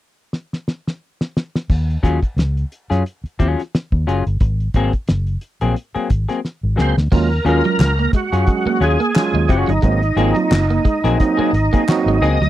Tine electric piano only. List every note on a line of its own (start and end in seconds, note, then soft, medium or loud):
7.12 7.28 F#3 medium
7.12 7.28 G#3 medium
7.12 7.28 C#4 medium
7.12 7.28 F4 medium
7.46 7.90 F#3 medium
7.46 7.90 G#3 medium
7.46 7.90 C#4 medium
7.46 7.90 F4 medium
8.48 8.77 F#3 medium
8.48 8.77 G#3 medium
8.48 8.77 C#4 medium
8.48 8.77 G#4 medium
9.16 9.45 F#3 medium
9.16 9.45 G#3 medium
9.16 9.45 C#4 medium
9.16 9.46 F4 medium
9.84 10.00 F#3 medium
9.84 10.00 A#3 medium
9.84 10.00 C4 medium
9.84 10.00 D#4 loud
10.18 10.62 F#3 medium
10.18 10.62 A#3 medium
10.18 10.62 C4 medium
10.18 10.62 F4 medium
11.20 11.49 F#3 medium
11.20 11.49 A#3 medium
11.20 11.49 C4 medium
11.20 11.50 D#4 loud
11.88 12.17 F#3 medium
11.88 12.17 A#3 medium
11.88 12.18 C4 medium
11.88 12.18 F#4 loud